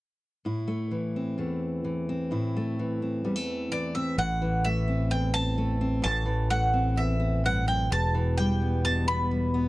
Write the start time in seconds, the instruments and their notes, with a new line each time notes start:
0.45 steel-string acoustic guitar A2 E4
0.68 steel-string acoustic guitar A3
0.91 steel-string acoustic guitar E3
1.16 steel-string acoustic guitar C4
1.38 steel-string acoustic guitar E2 A3
1.84 steel-string acoustic guitar E3
2.09 steel-string acoustic guitar C4
2.31 steel-string acoustic guitar A2 E4
2.57 steel-string acoustic guitar A3
2.79 steel-string acoustic guitar E3
3.02 steel-string acoustic guitar C4
3.25 steel-string acoustic guitar E2 G3
3.36 steel-string acoustic guitar A3
3.71 steel-string acoustic guitar E3, mandolin D5
3.95 steel-string acoustic guitar C4, mandolin E5
4.18 fingered electric bass A1, steel-string acoustic guitar A2, mandolin F#5
4.42 steel-string acoustic guitar E3
4.65 steel-string acoustic guitar A3, mandolin E5
4.88 steel-string acoustic guitar C4
5.10 steel-string acoustic guitar E2, mandolin G5
5.34 steel-string acoustic guitar C4, mandolin A5
5.58 steel-string acoustic guitar A3
5.81 steel-string acoustic guitar C4
6.02 fingered electric bass A1, steel-string acoustic guitar A2, mandolin A5
6.26 steel-string acoustic guitar E3
6.50 steel-string acoustic guitar A3, mandolin F#5
6.74 steel-string acoustic guitar C4
6.96 steel-string acoustic guitar E2, mandolin E5
7.20 steel-string acoustic guitar C4
7.44 steel-string acoustic guitar G2, mandolin F#5
7.66 steel-string acoustic guitar F#2, mandolin G5
7.90 fingered electric bass E1, steel-string acoustic guitar E2, mandolin A5
8.15 steel-string acoustic guitar E3
8.38 steel-string acoustic guitar G3, mandolin G5
8.62 steel-string acoustic guitar B3
8.84 steel-string acoustic guitar B2, mandolin A5
9.07 steel-string acoustic guitar B3, mandolin B5
9.31 steel-string acoustic guitar G3
9.54 steel-string acoustic guitar B3